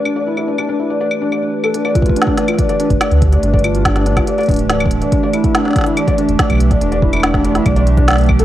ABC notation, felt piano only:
X:1
M:4/4
L:1/16
Q:1/4=142
K:Gmix
V:1 name="Felt piano"
D d E E D D D E d d z D d D z A | D d F F D D D F d d D z d z2 d | D d F F D D D F d d D z d z2 d | D d E E D D D E d d D z d z2 d |
D d E E D D D E d d z D d D z A |]